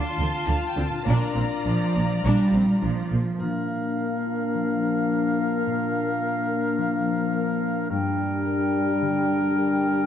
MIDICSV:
0, 0, Header, 1, 12, 480
1, 0, Start_track
1, 0, Key_signature, -2, "major"
1, 0, Tempo, 581395
1, 874, Time_signature, 4, 2, 24, 8
1, 3276, Tempo, 562852
1, 8473, End_track
2, 0, Start_track
2, 0, Title_t, "Violin section"
2, 0, Program_c, 0, 48
2, 0, Note_on_c, 0, 84, 65
2, 384, Note_off_c, 0, 84, 0
2, 399, Note_on_c, 0, 77, 64
2, 555, Note_off_c, 0, 77, 0
2, 566, Note_on_c, 0, 79, 59
2, 716, Note_off_c, 0, 79, 0
2, 722, Note_on_c, 0, 81, 63
2, 876, Note_off_c, 0, 81, 0
2, 883, Note_on_c, 0, 82, 73
2, 2537, Note_off_c, 0, 82, 0
2, 8473, End_track
3, 0, Start_track
3, 0, Title_t, "Flute section"
3, 0, Program_c, 1, 73
3, 2802, Note_on_c, 1, 77, 42
3, 6592, Note_off_c, 1, 77, 0
3, 6637, Note_on_c, 1, 79, 55
3, 8473, Note_off_c, 1, 79, 0
3, 8473, End_track
4, 0, Start_track
4, 0, Title_t, "Violin section"
4, 0, Program_c, 2, 48
4, 0, Note_on_c, 2, 81, 59
4, 850, Note_off_c, 2, 81, 0
4, 877, Note_on_c, 2, 74, 53
4, 2567, Note_off_c, 2, 74, 0
4, 8473, End_track
5, 0, Start_track
5, 0, Title_t, "Oboe"
5, 0, Program_c, 3, 68
5, 2807, Note_on_c, 3, 70, 42
5, 6595, Note_off_c, 3, 70, 0
5, 6632, Note_on_c, 3, 70, 54
5, 8473, Note_off_c, 3, 70, 0
5, 8473, End_track
6, 0, Start_track
6, 0, Title_t, "Clarinet"
6, 0, Program_c, 4, 71
6, 2810, Note_on_c, 4, 62, 43
6, 6597, Note_off_c, 4, 62, 0
6, 6634, Note_on_c, 4, 62, 52
6, 8473, Note_off_c, 4, 62, 0
6, 8473, End_track
7, 0, Start_track
7, 0, Title_t, "Harp"
7, 0, Program_c, 5, 46
7, 0, Note_on_c, 5, 50, 49
7, 0, Note_on_c, 5, 62, 41
7, 0, Note_on_c, 5, 65, 42
7, 0, Note_on_c, 5, 69, 39
7, 727, Note_on_c, 5, 46, 43
7, 756, Note_off_c, 5, 62, 0
7, 766, Note_on_c, 5, 62, 37
7, 791, Note_off_c, 5, 65, 0
7, 801, Note_on_c, 5, 65, 35
7, 820, Note_off_c, 5, 50, 0
7, 837, Note_on_c, 5, 70, 36
7, 875, Note_off_c, 5, 69, 0
7, 2750, Note_off_c, 5, 46, 0
7, 2806, Note_on_c, 5, 46, 42
7, 3032, Note_off_c, 5, 62, 0
7, 3042, Note_on_c, 5, 62, 34
7, 3265, Note_off_c, 5, 70, 0
7, 3275, Note_on_c, 5, 70, 34
7, 3511, Note_off_c, 5, 65, 0
7, 3522, Note_on_c, 5, 65, 36
7, 3766, Note_on_c, 5, 53, 37
7, 3991, Note_off_c, 5, 62, 0
7, 4001, Note_on_c, 5, 62, 32
7, 4236, Note_off_c, 5, 70, 0
7, 4246, Note_on_c, 5, 70, 38
7, 4473, Note_off_c, 5, 65, 0
7, 4483, Note_on_c, 5, 65, 35
7, 4709, Note_off_c, 5, 46, 0
7, 4720, Note_on_c, 5, 46, 50
7, 4952, Note_off_c, 5, 62, 0
7, 4963, Note_on_c, 5, 62, 39
7, 5186, Note_off_c, 5, 70, 0
7, 5196, Note_on_c, 5, 70, 43
7, 5423, Note_off_c, 5, 65, 0
7, 5433, Note_on_c, 5, 65, 45
7, 5662, Note_off_c, 5, 53, 0
7, 5673, Note_on_c, 5, 53, 44
7, 5905, Note_off_c, 5, 62, 0
7, 5916, Note_on_c, 5, 62, 36
7, 6138, Note_off_c, 5, 70, 0
7, 6149, Note_on_c, 5, 70, 43
7, 6376, Note_off_c, 5, 65, 0
7, 6386, Note_on_c, 5, 65, 38
7, 6625, Note_on_c, 5, 43, 54
7, 6646, Note_off_c, 5, 65, 0
7, 6647, Note_off_c, 5, 46, 0
7, 6647, Note_off_c, 5, 53, 0
7, 6847, Note_off_c, 5, 62, 0
7, 6857, Note_on_c, 5, 62, 43
7, 7089, Note_off_c, 5, 70, 0
7, 7099, Note_on_c, 5, 70, 43
7, 7338, Note_on_c, 5, 67, 41
7, 7577, Note_on_c, 5, 50, 45
7, 7808, Note_off_c, 5, 62, 0
7, 7818, Note_on_c, 5, 62, 37
7, 8043, Note_off_c, 5, 70, 0
7, 8053, Note_on_c, 5, 70, 37
7, 8294, Note_off_c, 5, 67, 0
7, 8473, Note_off_c, 5, 43, 0
7, 8473, Note_off_c, 5, 50, 0
7, 8473, Note_off_c, 5, 62, 0
7, 8473, Note_off_c, 5, 70, 0
7, 8473, End_track
8, 0, Start_track
8, 0, Title_t, "Viola section"
8, 0, Program_c, 6, 48
8, 0, Note_on_c, 6, 62, 54
8, 0, Note_on_c, 6, 65, 56
8, 138, Note_off_c, 6, 62, 0
8, 154, Note_on_c, 6, 60, 42
8, 220, Note_off_c, 6, 60, 0
8, 391, Note_on_c, 6, 62, 41
8, 458, Note_off_c, 6, 62, 0
8, 636, Note_on_c, 6, 60, 41
8, 702, Note_off_c, 6, 60, 0
8, 879, Note_on_c, 6, 62, 57
8, 1103, Note_off_c, 6, 62, 0
8, 1115, Note_on_c, 6, 60, 36
8, 1181, Note_off_c, 6, 60, 0
8, 1365, Note_on_c, 6, 62, 35
8, 1431, Note_off_c, 6, 62, 0
8, 1608, Note_on_c, 6, 58, 35
8, 1674, Note_off_c, 6, 58, 0
8, 1857, Note_on_c, 6, 62, 58
8, 2074, Note_off_c, 6, 62, 0
8, 2094, Note_on_c, 6, 60, 41
8, 2160, Note_off_c, 6, 60, 0
8, 2328, Note_on_c, 6, 62, 38
8, 2394, Note_off_c, 6, 62, 0
8, 2571, Note_on_c, 6, 58, 40
8, 2637, Note_off_c, 6, 58, 0
8, 2639, Note_off_c, 6, 65, 0
8, 8473, End_track
9, 0, Start_track
9, 0, Title_t, "French horn section"
9, 0, Program_c, 7, 60
9, 2805, Note_on_c, 7, 58, 49
9, 6594, Note_off_c, 7, 58, 0
9, 6636, Note_on_c, 7, 55, 67
9, 8473, Note_off_c, 7, 55, 0
9, 8473, End_track
10, 0, Start_track
10, 0, Title_t, "Cello section"
10, 0, Program_c, 8, 48
10, 159, Note_on_c, 8, 50, 41
10, 225, Note_off_c, 8, 50, 0
10, 400, Note_on_c, 8, 50, 39
10, 466, Note_off_c, 8, 50, 0
10, 641, Note_on_c, 8, 50, 40
10, 707, Note_off_c, 8, 50, 0
10, 875, Note_on_c, 8, 46, 57
10, 941, Note_off_c, 8, 46, 0
10, 1122, Note_on_c, 8, 46, 39
10, 1188, Note_off_c, 8, 46, 0
10, 1370, Note_on_c, 8, 53, 49
10, 1817, Note_off_c, 8, 53, 0
10, 1847, Note_on_c, 8, 55, 53
10, 2315, Note_off_c, 8, 55, 0
10, 2324, Note_on_c, 8, 53, 39
10, 2795, Note_off_c, 8, 53, 0
10, 8473, End_track
11, 0, Start_track
11, 0, Title_t, "Double bass section"
11, 0, Program_c, 10, 48
11, 158, Note_on_c, 10, 38, 38
11, 224, Note_off_c, 10, 38, 0
11, 394, Note_on_c, 10, 38, 38
11, 460, Note_off_c, 10, 38, 0
11, 637, Note_on_c, 10, 38, 39
11, 703, Note_off_c, 10, 38, 0
11, 880, Note_on_c, 10, 34, 54
11, 946, Note_off_c, 10, 34, 0
11, 1127, Note_on_c, 10, 34, 38
11, 1193, Note_off_c, 10, 34, 0
11, 1371, Note_on_c, 10, 34, 33
11, 1437, Note_off_c, 10, 34, 0
11, 1618, Note_on_c, 10, 34, 40
11, 1684, Note_off_c, 10, 34, 0
11, 1858, Note_on_c, 10, 34, 54
11, 1924, Note_off_c, 10, 34, 0
11, 2095, Note_on_c, 10, 34, 41
11, 2161, Note_off_c, 10, 34, 0
11, 2338, Note_on_c, 10, 34, 38
11, 2404, Note_off_c, 10, 34, 0
11, 2580, Note_on_c, 10, 34, 39
11, 2646, Note_off_c, 10, 34, 0
11, 8473, End_track
12, 0, Start_track
12, 0, Title_t, "Drums"
12, 2805, Note_on_c, 9, 81, 25
12, 2888, Note_off_c, 9, 81, 0
12, 8473, End_track
0, 0, End_of_file